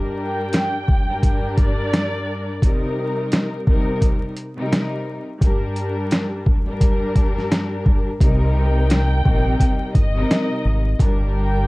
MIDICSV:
0, 0, Header, 1, 5, 480
1, 0, Start_track
1, 0, Key_signature, -3, "minor"
1, 0, Tempo, 697674
1, 1805, Time_signature, 4, 2, 24, 8
1, 8030, End_track
2, 0, Start_track
2, 0, Title_t, "Violin section"
2, 0, Program_c, 0, 48
2, 130, Note_on_c, 0, 79, 81
2, 1060, Note_off_c, 0, 79, 0
2, 1083, Note_on_c, 0, 74, 91
2, 1776, Note_off_c, 0, 74, 0
2, 5888, Note_on_c, 0, 79, 89
2, 6819, Note_off_c, 0, 79, 0
2, 6844, Note_on_c, 0, 75, 83
2, 7537, Note_off_c, 0, 75, 0
2, 7810, Note_on_c, 0, 79, 82
2, 8030, Note_off_c, 0, 79, 0
2, 8030, End_track
3, 0, Start_track
3, 0, Title_t, "String section"
3, 0, Program_c, 1, 48
3, 0, Note_on_c, 1, 43, 96
3, 0, Note_on_c, 1, 55, 91
3, 0, Note_on_c, 1, 62, 82
3, 0, Note_on_c, 1, 70, 100
3, 669, Note_off_c, 1, 43, 0
3, 671, Note_off_c, 1, 55, 0
3, 675, Note_off_c, 1, 62, 0
3, 678, Note_off_c, 1, 70, 0
3, 742, Note_on_c, 1, 43, 99
3, 749, Note_on_c, 1, 55, 97
3, 755, Note_on_c, 1, 62, 91
3, 761, Note_on_c, 1, 70, 107
3, 1733, Note_off_c, 1, 43, 0
3, 1736, Note_off_c, 1, 55, 0
3, 1739, Note_off_c, 1, 62, 0
3, 1742, Note_off_c, 1, 70, 0
3, 1803, Note_on_c, 1, 48, 93
3, 1810, Note_on_c, 1, 55, 83
3, 1816, Note_on_c, 1, 63, 90
3, 1822, Note_on_c, 1, 70, 104
3, 2480, Note_off_c, 1, 48, 0
3, 2483, Note_off_c, 1, 55, 0
3, 2486, Note_off_c, 1, 63, 0
3, 2489, Note_off_c, 1, 70, 0
3, 2516, Note_on_c, 1, 48, 100
3, 2523, Note_on_c, 1, 55, 88
3, 2529, Note_on_c, 1, 63, 86
3, 2535, Note_on_c, 1, 70, 110
3, 2971, Note_off_c, 1, 48, 0
3, 2974, Note_off_c, 1, 55, 0
3, 2977, Note_off_c, 1, 63, 0
3, 2980, Note_off_c, 1, 70, 0
3, 3144, Note_on_c, 1, 48, 96
3, 3149, Note_on_c, 1, 55, 83
3, 3156, Note_on_c, 1, 63, 90
3, 3161, Note_on_c, 1, 70, 100
3, 3581, Note_off_c, 1, 48, 0
3, 3583, Note_off_c, 1, 55, 0
3, 3587, Note_off_c, 1, 63, 0
3, 3590, Note_off_c, 1, 70, 0
3, 3724, Note_on_c, 1, 43, 97
3, 3730, Note_on_c, 1, 55, 93
3, 3735, Note_on_c, 1, 62, 82
3, 3741, Note_on_c, 1, 70, 103
3, 4509, Note_off_c, 1, 43, 0
3, 4512, Note_off_c, 1, 55, 0
3, 4515, Note_off_c, 1, 62, 0
3, 4518, Note_off_c, 1, 70, 0
3, 4582, Note_on_c, 1, 43, 97
3, 4588, Note_on_c, 1, 55, 98
3, 4595, Note_on_c, 1, 62, 91
3, 4600, Note_on_c, 1, 70, 114
3, 5573, Note_off_c, 1, 43, 0
3, 5576, Note_off_c, 1, 55, 0
3, 5579, Note_off_c, 1, 62, 0
3, 5582, Note_off_c, 1, 70, 0
3, 5641, Note_on_c, 1, 48, 96
3, 5647, Note_on_c, 1, 55, 84
3, 5653, Note_on_c, 1, 63, 90
3, 5659, Note_on_c, 1, 70, 107
3, 6319, Note_off_c, 1, 48, 0
3, 6322, Note_off_c, 1, 55, 0
3, 6325, Note_off_c, 1, 63, 0
3, 6328, Note_off_c, 1, 70, 0
3, 6357, Note_on_c, 1, 48, 102
3, 6362, Note_on_c, 1, 55, 91
3, 6369, Note_on_c, 1, 63, 90
3, 6375, Note_on_c, 1, 70, 111
3, 6811, Note_off_c, 1, 48, 0
3, 6814, Note_off_c, 1, 55, 0
3, 6817, Note_off_c, 1, 63, 0
3, 6820, Note_off_c, 1, 70, 0
3, 6983, Note_on_c, 1, 48, 94
3, 6990, Note_on_c, 1, 55, 84
3, 6995, Note_on_c, 1, 63, 89
3, 7002, Note_on_c, 1, 70, 103
3, 7420, Note_off_c, 1, 48, 0
3, 7424, Note_off_c, 1, 55, 0
3, 7426, Note_off_c, 1, 63, 0
3, 7430, Note_off_c, 1, 70, 0
3, 7562, Note_on_c, 1, 43, 100
3, 7568, Note_on_c, 1, 55, 92
3, 7576, Note_on_c, 1, 62, 82
3, 7581, Note_on_c, 1, 70, 108
3, 8030, Note_off_c, 1, 43, 0
3, 8030, Note_off_c, 1, 55, 0
3, 8030, Note_off_c, 1, 62, 0
3, 8030, Note_off_c, 1, 70, 0
3, 8030, End_track
4, 0, Start_track
4, 0, Title_t, "Fingered electric bass"
4, 0, Program_c, 2, 33
4, 5646, Note_on_c, 2, 36, 101
4, 6337, Note_off_c, 2, 36, 0
4, 6368, Note_on_c, 2, 34, 88
4, 6561, Note_off_c, 2, 34, 0
4, 6845, Note_on_c, 2, 31, 87
4, 7039, Note_off_c, 2, 31, 0
4, 7327, Note_on_c, 2, 32, 86
4, 7520, Note_off_c, 2, 32, 0
4, 7566, Note_on_c, 2, 31, 110
4, 8030, Note_off_c, 2, 31, 0
4, 8030, End_track
5, 0, Start_track
5, 0, Title_t, "Drums"
5, 363, Note_on_c, 9, 42, 75
5, 371, Note_on_c, 9, 40, 81
5, 373, Note_on_c, 9, 38, 103
5, 432, Note_off_c, 9, 42, 0
5, 440, Note_off_c, 9, 40, 0
5, 442, Note_off_c, 9, 38, 0
5, 607, Note_on_c, 9, 36, 101
5, 676, Note_off_c, 9, 36, 0
5, 844, Note_on_c, 9, 36, 89
5, 847, Note_on_c, 9, 42, 80
5, 913, Note_off_c, 9, 36, 0
5, 916, Note_off_c, 9, 42, 0
5, 1083, Note_on_c, 9, 36, 100
5, 1085, Note_on_c, 9, 42, 54
5, 1152, Note_off_c, 9, 36, 0
5, 1153, Note_off_c, 9, 42, 0
5, 1331, Note_on_c, 9, 40, 80
5, 1333, Note_on_c, 9, 38, 104
5, 1333, Note_on_c, 9, 42, 66
5, 1400, Note_off_c, 9, 40, 0
5, 1402, Note_off_c, 9, 38, 0
5, 1402, Note_off_c, 9, 42, 0
5, 1804, Note_on_c, 9, 36, 109
5, 1809, Note_on_c, 9, 42, 82
5, 1873, Note_off_c, 9, 36, 0
5, 1878, Note_off_c, 9, 42, 0
5, 2283, Note_on_c, 9, 42, 77
5, 2291, Note_on_c, 9, 40, 81
5, 2293, Note_on_c, 9, 38, 101
5, 2352, Note_off_c, 9, 42, 0
5, 2360, Note_off_c, 9, 40, 0
5, 2362, Note_off_c, 9, 38, 0
5, 2526, Note_on_c, 9, 36, 103
5, 2595, Note_off_c, 9, 36, 0
5, 2763, Note_on_c, 9, 36, 90
5, 2765, Note_on_c, 9, 42, 82
5, 2832, Note_off_c, 9, 36, 0
5, 2834, Note_off_c, 9, 42, 0
5, 3003, Note_on_c, 9, 42, 55
5, 3072, Note_off_c, 9, 42, 0
5, 3250, Note_on_c, 9, 40, 78
5, 3252, Note_on_c, 9, 38, 100
5, 3252, Note_on_c, 9, 42, 67
5, 3319, Note_off_c, 9, 40, 0
5, 3320, Note_off_c, 9, 38, 0
5, 3321, Note_off_c, 9, 42, 0
5, 3724, Note_on_c, 9, 36, 109
5, 3728, Note_on_c, 9, 42, 84
5, 3793, Note_off_c, 9, 36, 0
5, 3797, Note_off_c, 9, 42, 0
5, 3964, Note_on_c, 9, 42, 54
5, 4033, Note_off_c, 9, 42, 0
5, 4204, Note_on_c, 9, 42, 77
5, 4211, Note_on_c, 9, 40, 79
5, 4213, Note_on_c, 9, 38, 100
5, 4273, Note_off_c, 9, 42, 0
5, 4280, Note_off_c, 9, 40, 0
5, 4282, Note_off_c, 9, 38, 0
5, 4447, Note_on_c, 9, 36, 99
5, 4516, Note_off_c, 9, 36, 0
5, 4684, Note_on_c, 9, 36, 89
5, 4686, Note_on_c, 9, 42, 82
5, 4753, Note_off_c, 9, 36, 0
5, 4755, Note_off_c, 9, 42, 0
5, 4923, Note_on_c, 9, 36, 98
5, 4924, Note_on_c, 9, 42, 55
5, 4992, Note_off_c, 9, 36, 0
5, 4993, Note_off_c, 9, 42, 0
5, 5080, Note_on_c, 9, 38, 33
5, 5149, Note_off_c, 9, 38, 0
5, 5171, Note_on_c, 9, 40, 81
5, 5173, Note_on_c, 9, 38, 101
5, 5173, Note_on_c, 9, 42, 65
5, 5240, Note_off_c, 9, 40, 0
5, 5241, Note_off_c, 9, 38, 0
5, 5242, Note_off_c, 9, 42, 0
5, 5407, Note_on_c, 9, 36, 90
5, 5475, Note_off_c, 9, 36, 0
5, 5645, Note_on_c, 9, 36, 109
5, 5649, Note_on_c, 9, 42, 83
5, 5713, Note_off_c, 9, 36, 0
5, 5718, Note_off_c, 9, 42, 0
5, 6124, Note_on_c, 9, 42, 79
5, 6131, Note_on_c, 9, 40, 79
5, 6133, Note_on_c, 9, 38, 104
5, 6193, Note_off_c, 9, 42, 0
5, 6200, Note_off_c, 9, 40, 0
5, 6202, Note_off_c, 9, 38, 0
5, 6367, Note_on_c, 9, 36, 105
5, 6436, Note_off_c, 9, 36, 0
5, 6604, Note_on_c, 9, 36, 89
5, 6608, Note_on_c, 9, 42, 85
5, 6673, Note_off_c, 9, 36, 0
5, 6677, Note_off_c, 9, 42, 0
5, 6844, Note_on_c, 9, 36, 99
5, 6846, Note_on_c, 9, 42, 54
5, 6912, Note_off_c, 9, 36, 0
5, 6914, Note_off_c, 9, 42, 0
5, 7091, Note_on_c, 9, 40, 80
5, 7093, Note_on_c, 9, 38, 100
5, 7093, Note_on_c, 9, 42, 69
5, 7160, Note_off_c, 9, 40, 0
5, 7162, Note_off_c, 9, 38, 0
5, 7162, Note_off_c, 9, 42, 0
5, 7565, Note_on_c, 9, 36, 112
5, 7569, Note_on_c, 9, 42, 86
5, 7633, Note_off_c, 9, 36, 0
5, 7638, Note_off_c, 9, 42, 0
5, 8030, End_track
0, 0, End_of_file